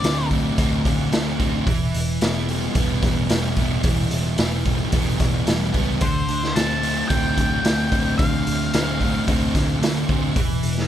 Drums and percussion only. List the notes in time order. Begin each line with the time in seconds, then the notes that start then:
0.04 snare, open hi-hat
0.31 kick, open hi-hat
0.58 kick, open hi-hat
0.85 kick, open hi-hat
1.13 snare, open hi-hat
1.40 kick, open hi-hat
1.67 kick, open hi-hat
1.94 open hi-hat
2.21 snare, open hi-hat
2.49 open hi-hat
2.75 kick, open hi-hat
3.03 kick, snare, open hi-hat
3.30 snare, open hi-hat
3.56 kick, open hi-hat
3.83 kick, open hi-hat
4.11 open hi-hat
4.38 snare, open hi-hat
4.65 kick, open hi-hat
4.92 kick, open hi-hat
5.20 kick, snare, open hi-hat
5.47 snare, open hi-hat
5.74 kick, open hi-hat
6.01 kick, open hi-hat
6.29 open hi-hat
6.43 snare
6.56 snare, open hi-hat
6.83 open hi-hat
7.10 kick, open hi-hat
7.38 kick, open hi-hat
7.65 snare, open hi-hat
7.92 kick, open hi-hat
8.19 kick, open hi-hat
8.47 open hi-hat
8.74 snare, open hi-hat
9.01 kick, open hi-hat
9.28 kick, open hi-hat
9.55 kick, snare, open hi-hat
9.83 snare, open hi-hat
10.09 kick, open hi-hat
10.36 kick, open hi-hat
10.63 open hi-hat
10.78 snare